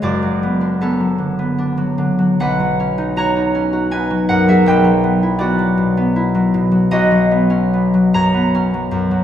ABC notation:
X:1
M:3/4
L:1/16
Q:1/4=79
K:B
V:1 name="Harp"
[Fc=d^d]4 [C=A]8 | [Bf]4 [ca]4 [Bg]2 [Af] [Ge] | [B=g]4 [F=d]8 | [Fd]6 [ca]6 |]
V:2 name="Harp" clef=bass
[F,,,F,,C] F, B, =D B, F, =D, B, D F, D, F, | B,,, F, C D F D C F D F, F,, F, | B,,, F, B, E B, F, B,, B, E F, B,, F, | B,,, F, B, C B, F, F,, B, C F, F,, F, |]